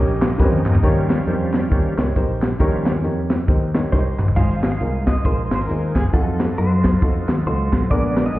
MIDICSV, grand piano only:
0, 0, Header, 1, 2, 480
1, 0, Start_track
1, 0, Tempo, 441826
1, 907, Time_signature, 4, 2, 24, 8
1, 9116, End_track
2, 0, Start_track
2, 0, Title_t, "Grand piano"
2, 0, Program_c, 0, 0
2, 0, Note_on_c, 0, 61, 71
2, 0, Note_on_c, 0, 63, 63
2, 0, Note_on_c, 0, 67, 63
2, 0, Note_on_c, 0, 70, 64
2, 0, Note_on_c, 0, 73, 76
2, 321, Note_off_c, 0, 61, 0
2, 323, Note_off_c, 0, 63, 0
2, 326, Note_off_c, 0, 67, 0
2, 328, Note_off_c, 0, 70, 0
2, 331, Note_off_c, 0, 73, 0
2, 412, Note_on_c, 0, 61, 89
2, 416, Note_on_c, 0, 63, 79
2, 421, Note_on_c, 0, 67, 85
2, 426, Note_on_c, 0, 70, 80
2, 432, Note_on_c, 0, 71, 83
2, 488, Note_on_c, 0, 72, 94
2, 498, Note_off_c, 0, 71, 0
2, 798, Note_off_c, 0, 61, 0
2, 799, Note_off_c, 0, 63, 0
2, 802, Note_off_c, 0, 67, 0
2, 804, Note_off_c, 0, 70, 0
2, 835, Note_off_c, 0, 72, 0
2, 894, Note_on_c, 0, 63, 102
2, 901, Note_on_c, 0, 51, 72
2, 901, Note_on_c, 0, 67, 98
2, 906, Note_on_c, 0, 70, 98
2, 914, Note_on_c, 0, 73, 118
2, 1278, Note_off_c, 0, 63, 0
2, 1282, Note_off_c, 0, 67, 0
2, 1284, Note_off_c, 0, 70, 0
2, 1289, Note_off_c, 0, 73, 0
2, 1375, Note_on_c, 0, 63, 77
2, 1382, Note_on_c, 0, 67, 71
2, 1386, Note_on_c, 0, 70, 70
2, 1395, Note_on_c, 0, 72, 90
2, 1625, Note_off_c, 0, 51, 0
2, 1759, Note_off_c, 0, 63, 0
2, 1762, Note_off_c, 0, 67, 0
2, 1764, Note_off_c, 0, 70, 0
2, 1769, Note_off_c, 0, 72, 0
2, 1850, Note_on_c, 0, 63, 79
2, 1859, Note_on_c, 0, 67, 72
2, 1865, Note_on_c, 0, 70, 69
2, 1872, Note_on_c, 0, 73, 80
2, 2069, Note_off_c, 0, 63, 0
2, 2073, Note_off_c, 0, 67, 0
2, 2076, Note_off_c, 0, 70, 0
2, 2079, Note_off_c, 0, 73, 0
2, 2133, Note_on_c, 0, 63, 71
2, 2140, Note_on_c, 0, 67, 68
2, 2148, Note_on_c, 0, 70, 65
2, 2157, Note_on_c, 0, 73, 86
2, 2286, Note_off_c, 0, 63, 0
2, 2290, Note_off_c, 0, 67, 0
2, 2294, Note_off_c, 0, 70, 0
2, 2298, Note_off_c, 0, 73, 0
2, 2338, Note_on_c, 0, 63, 81
2, 2344, Note_on_c, 0, 67, 77
2, 2349, Note_on_c, 0, 70, 79
2, 2357, Note_on_c, 0, 72, 98
2, 2720, Note_off_c, 0, 63, 0
2, 2724, Note_off_c, 0, 67, 0
2, 2726, Note_off_c, 0, 70, 0
2, 2730, Note_off_c, 0, 72, 0
2, 2815, Note_on_c, 0, 63, 105
2, 2822, Note_on_c, 0, 67, 99
2, 2826, Note_on_c, 0, 51, 73
2, 2830, Note_on_c, 0, 70, 99
2, 2835, Note_on_c, 0, 73, 115
2, 3199, Note_off_c, 0, 63, 0
2, 3203, Note_off_c, 0, 67, 0
2, 3207, Note_off_c, 0, 70, 0
2, 3209, Note_off_c, 0, 73, 0
2, 3290, Note_on_c, 0, 63, 78
2, 3296, Note_on_c, 0, 67, 74
2, 3303, Note_on_c, 0, 70, 69
2, 3310, Note_on_c, 0, 73, 82
2, 3548, Note_off_c, 0, 51, 0
2, 3677, Note_off_c, 0, 63, 0
2, 3680, Note_off_c, 0, 67, 0
2, 3683, Note_off_c, 0, 70, 0
2, 3687, Note_off_c, 0, 73, 0
2, 3770, Note_on_c, 0, 63, 78
2, 3777, Note_on_c, 0, 67, 72
2, 3784, Note_on_c, 0, 70, 68
2, 3793, Note_on_c, 0, 72, 81
2, 3990, Note_off_c, 0, 63, 0
2, 3993, Note_off_c, 0, 67, 0
2, 3996, Note_off_c, 0, 70, 0
2, 4001, Note_off_c, 0, 72, 0
2, 4061, Note_on_c, 0, 63, 74
2, 4069, Note_on_c, 0, 67, 68
2, 4075, Note_on_c, 0, 70, 63
2, 4082, Note_on_c, 0, 73, 78
2, 4211, Note_off_c, 0, 63, 0
2, 4215, Note_off_c, 0, 67, 0
2, 4218, Note_off_c, 0, 70, 0
2, 4221, Note_off_c, 0, 73, 0
2, 4256, Note_on_c, 0, 63, 76
2, 4262, Note_on_c, 0, 67, 80
2, 4271, Note_on_c, 0, 70, 75
2, 4274, Note_on_c, 0, 73, 77
2, 4333, Note_on_c, 0, 75, 91
2, 4340, Note_off_c, 0, 73, 0
2, 4641, Note_off_c, 0, 63, 0
2, 4644, Note_off_c, 0, 67, 0
2, 4648, Note_off_c, 0, 70, 0
2, 4679, Note_off_c, 0, 75, 0
2, 4733, Note_on_c, 0, 63, 85
2, 4741, Note_on_c, 0, 65, 83
2, 4742, Note_on_c, 0, 44, 59
2, 4747, Note_on_c, 0, 68, 82
2, 4753, Note_on_c, 0, 72, 100
2, 5119, Note_off_c, 0, 63, 0
2, 5123, Note_off_c, 0, 65, 0
2, 5126, Note_off_c, 0, 68, 0
2, 5129, Note_off_c, 0, 72, 0
2, 5214, Note_on_c, 0, 63, 63
2, 5221, Note_on_c, 0, 65, 59
2, 5229, Note_on_c, 0, 68, 59
2, 5234, Note_on_c, 0, 70, 73
2, 5467, Note_off_c, 0, 44, 0
2, 5600, Note_off_c, 0, 63, 0
2, 5604, Note_off_c, 0, 65, 0
2, 5607, Note_off_c, 0, 68, 0
2, 5610, Note_off_c, 0, 70, 0
2, 5695, Note_on_c, 0, 63, 66
2, 5703, Note_on_c, 0, 65, 59
2, 5711, Note_on_c, 0, 68, 60
2, 5715, Note_on_c, 0, 70, 75
2, 6080, Note_off_c, 0, 63, 0
2, 6084, Note_off_c, 0, 65, 0
2, 6088, Note_off_c, 0, 68, 0
2, 6090, Note_off_c, 0, 70, 0
2, 6174, Note_on_c, 0, 63, 67
2, 6181, Note_on_c, 0, 65, 63
2, 6189, Note_on_c, 0, 68, 65
2, 6197, Note_on_c, 0, 72, 73
2, 6560, Note_off_c, 0, 63, 0
2, 6564, Note_off_c, 0, 65, 0
2, 6568, Note_off_c, 0, 68, 0
2, 6572, Note_off_c, 0, 72, 0
2, 6654, Note_on_c, 0, 63, 83
2, 6661, Note_on_c, 0, 65, 81
2, 6665, Note_on_c, 0, 66, 85
2, 6674, Note_on_c, 0, 69, 97
2, 7040, Note_off_c, 0, 63, 0
2, 7044, Note_off_c, 0, 65, 0
2, 7045, Note_off_c, 0, 66, 0
2, 7050, Note_off_c, 0, 69, 0
2, 7140, Note_on_c, 0, 63, 71
2, 7149, Note_on_c, 0, 65, 60
2, 7152, Note_on_c, 0, 66, 59
2, 7161, Note_on_c, 0, 69, 71
2, 7523, Note_off_c, 0, 63, 0
2, 7527, Note_off_c, 0, 65, 0
2, 7529, Note_off_c, 0, 66, 0
2, 7533, Note_off_c, 0, 69, 0
2, 7615, Note_on_c, 0, 63, 64
2, 7623, Note_on_c, 0, 65, 60
2, 7627, Note_on_c, 0, 66, 57
2, 7639, Note_on_c, 0, 69, 71
2, 8001, Note_off_c, 0, 63, 0
2, 8005, Note_off_c, 0, 65, 0
2, 8006, Note_off_c, 0, 66, 0
2, 8012, Note_off_c, 0, 69, 0
2, 8098, Note_on_c, 0, 63, 69
2, 8107, Note_on_c, 0, 65, 63
2, 8117, Note_on_c, 0, 66, 66
2, 8119, Note_on_c, 0, 69, 81
2, 8482, Note_off_c, 0, 63, 0
2, 8486, Note_off_c, 0, 65, 0
2, 8491, Note_off_c, 0, 66, 0
2, 8492, Note_off_c, 0, 69, 0
2, 8583, Note_on_c, 0, 59, 91
2, 8587, Note_on_c, 0, 62, 82
2, 8590, Note_on_c, 0, 46, 61
2, 8597, Note_on_c, 0, 68, 83
2, 8602, Note_on_c, 0, 70, 99
2, 8964, Note_off_c, 0, 59, 0
2, 8966, Note_off_c, 0, 62, 0
2, 8971, Note_off_c, 0, 68, 0
2, 8973, Note_off_c, 0, 70, 0
2, 9063, Note_on_c, 0, 59, 66
2, 9070, Note_on_c, 0, 62, 60
2, 9075, Note_on_c, 0, 68, 59
2, 9116, Note_off_c, 0, 46, 0
2, 9116, Note_off_c, 0, 59, 0
2, 9116, Note_off_c, 0, 62, 0
2, 9116, Note_off_c, 0, 68, 0
2, 9116, End_track
0, 0, End_of_file